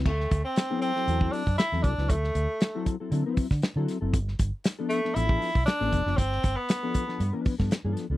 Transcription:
<<
  \new Staff \with { instrumentName = "Clean electric guitar" } { \time 4/4 \key d \major \tempo 4 = 118 r4 r16 <fis c' e' a'>8 <fis c' e' a'>16 <fis c' e' a'>16 <fis c' e' a'>8 r8 <fis c' e' a'>8 <fis c' e' b'>16 | r4 r16 <fis c' e' a'>8 <fis c' e' a'>16 <fis c' e' a'>16 <fis c' e' b'>8 r8 <fis c' e' a'>8 <fis c' e' a'>16 | r4 r16 <f b d' a'>8 <f b d' a'>16 <f b d' a'>16 <f b d' a'>8 r8 <f b d' a'>8 <f b d' b'>16 | r4 r16 <f b d' a'>8 <f b d' a'>16 r16 <f b d' b'>8 <f b d' a'>16 r16 <f b d' a'>8 <f b d' a'>16 | }
  \new Staff \with { instrumentName = "Tenor saxophone" } { \time 4/4 \key d \major a8. c'8. c'4 d'8 e'8 d'8 | a4. r2 r8 | r4. a8 e'4 d'4 | c'8. b4. r4. r16 | }
  \new Staff \with { instrumentName = "Fingered electric bass" } { \clef bass \time 4/4 \key d \major d,8 d,16 r4 r16 e,8 r16 fis,16 r16 e,16 c,16 cis,16 | d,8 d,16 r4 r16 d16 r8 d16 r16 d16 r16 fis,,16 | g,,8 g,,16 r4 r16 a,,8 r16 b,,16 r16 a,,16 f,,16 fis,,16 | g,,8 g,,16 r4 r16 g,16 r8 g,16 r16 g,16 r16 cis,16 | }
  \new DrumStaff \with { instrumentName = "Drums" } \drummode { \time 4/4 <cymc bd>16 sn16 <hh bd>8 <hh sn>8 hh16 sn16 hh16 bd16 <hho sn>16 bd16 <hh sn>16 sn16 <hh bd>16 sn16 | <hh bd>16 sn16 hh8 <hh sn>8 <hh bd>8 hh8 <hho bd>16 <bd sn>16 <hh sn>8 <hh sn>8 | <hh bd>16 sn16 <hh bd>8 <hh sn>8 hh16 sn16 hh16 bd16 <hho sn>16 bd16 <hh sn>16 sn16 <hh bd>16 sn16 | <hh bd>16 sn16 <hh bd>8 <hh sn>8 <hh bd>16 sn16 hh8 <hho bd>16 <bd sn>16 <hh sn>8 <hh sn>8 | }
>>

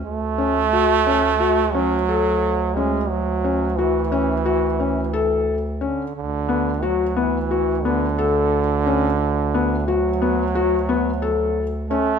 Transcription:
<<
  \new Staff \with { instrumentName = "Felt piano" } { \time 9/8 \key d \major \tempo 4. = 59 r8 cis'8 fis'8 cis'8 fis'8 cis'8 a'4 cis'8 | r8 cis'8 fis'8 cis'8 fis'8 cis'8 a'4 cis'8 | r8 b8 fis'8 b8 fis'8 b8 a'4 cis'8 | r8 b8 fis'8 b8 fis'8 b8 a'4 cis'8 | }
  \new Staff \with { instrumentName = "Trombone" } { \clef bass \time 9/8 \key d \major a2~ a8 fis4. gis8 | fis4 e2~ e8 r8 d8 | d4 fis8 e4 d2~ | d4 fis2~ fis8 r8 a8 | }
  \new Staff \with { instrumentName = "Bass clarinet" } { \clef bass \time 9/8 \key d \major d,1~ d,8~ | d,1~ d,8 | d,1~ d,8~ | d,1~ d,8 | }
>>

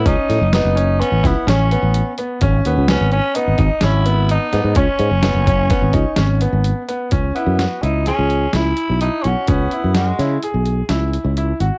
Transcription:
<<
  \new Staff \with { instrumentName = "Grand piano" } { \time 5/4 \key cis \minor \tempo 4 = 127 cis'4 b8 cis'8 b8 e'8 cis'8 b4 b8 | cis'4 b8 cis'8 b8 dis'8 cis'8 b4 b8 | cis'4 b8 cis'8 b8 dis'8 cis'8 b4 b8 | cis'8 e'8 fis'8 e'8 gis'4 e'4 e'8 fis'8 |
cis'8 e'8 fis'8 e'8 gis'4 e'4 e'8 fis'8 | }
  \new Staff \with { instrumentName = "Tenor saxophone" } { \time 5/4 \key cis \minor dis'4 dis'4 cis'8 b8 cis'4. r8 | r8 b8 cis'8 cis'8 dis'4 e'4 dis'4 | cis'1 r4 | r8 b4 dis'8 cis'4 e'4 dis'8 cis'8 |
b4 gis4 r2. | }
  \new Staff \with { instrumentName = "Fretless electric bass" } { \clef bass \time 5/4 \key cis \minor cis,16 r16 a,16 fis,,8 fis,,4 a,,16 cis,16 r16 a,,8. a,,8 r8. | gis,,8 dis,16 cis,8 gis,,8 r8 gis,,16 gis,,16 r16 gis,,4. gis,16 gis,16 | cis,16 r16 gis,16 fis,,8 fis,,4 gis,,16 cis,16 r16 gis,,8. gis,,8 r8. | cis,8 r16 fis,8 r16 cis,8. cis,8. cis,8 r16 b,,8 r16 b,,16 r16 |
cis,8 r16 fis,8. cis8 r16 b,,8. cis,8. cis,8. gis,,16 r16 | }
  \new DrumStaff \with { instrumentName = "Drums" } \drummode { \time 5/4 <hh bd>8 <hh sn>8 <hh sn>8 hh8 hh8 <hh bd sn>8 <hh sn>8 hh8 hh8 hh8 | <hh bd>8 hh8 <hh sn>8 hh8 hh8 <hh bd>8 <hh sn>8 hh8 hh8 <hh sn>8 | <hh bd>8 hh8 <hh sn>8 <hh bd>8 <hh bd sn>8 <hh bd>8 <hh sn>8 hh8 hh8 hh8 | <hh bd>8 hh8 <hh sn>8 hh8 <hh sn>8 hh8 <hh sn>8 hh8 hh8 hh8 |
<hh bd>8 hh8 <hh sn>8 <hh sn>8 hh8 hh8 <hh sn>8 hh8 hh8 hh8 | }
>>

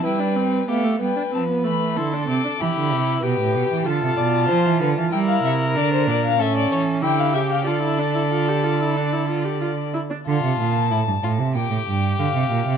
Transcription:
<<
  \new Staff \with { instrumentName = "Violin" } { \time 4/4 \key g \dorian \tempo 4 = 94 g''4 f''8 g''8 a''8 b''8 c'''8 d'''8 | b''4 g''4 a''2 | \key d \minor g''16 f''16 e''8 d''16 c''16 d''16 f''16 e''16 d''16 cis''8 g''16 f''16 e''16 f''16 | d''2.~ d''8 r8 |
a''2 g''4 f''4 | }
  \new Staff \with { instrumentName = "Violin" } { \time 4/4 \key g \dorian b'4 g'8 b'4. a'4 | g'4 b'4 a'8 d''8 c''8 b'8 | \key d \minor bes'2 a'4 g'4 | a'2.~ a'8 r8 |
f'4 e'8 f'8 g'2 | }
  \new Staff \with { instrumentName = "Viola" } { \time 4/4 \key g \dorian e'16 d'16 c'8 b16 a16 b16 d'16 c'16 b16 a8 e'16 d'16 c'16 d'16 | e'4 g'4 f'2 | \key d \minor e'4 d'4 cis'4 e'8 g'8 | f'16 e'16 d'16 e'16 f'16 g'16 f'16 e'16 d'16 e'16 f'16 g'16 f'8 e'16 d'16 |
r1 | }
  \new Staff \with { instrumentName = "Cello" } { \clef bass \time 4/4 \key g \dorian g4 a8 g8 f8 e8 d8 c8 | e16 d16 c8 b,16 a,16 b,16 e16 d16 c16 b,8 f16 e16 d16 e16 | \key d \minor g8 c8 d8 bes,8 a,8 e8 d8 cis8 | d2.~ d8 r8 |
d16 c16 bes,8 a,16 g,16 a,16 c16 bes,16 a,16 g,8 d16 c16 bes,16 c16 | }
>>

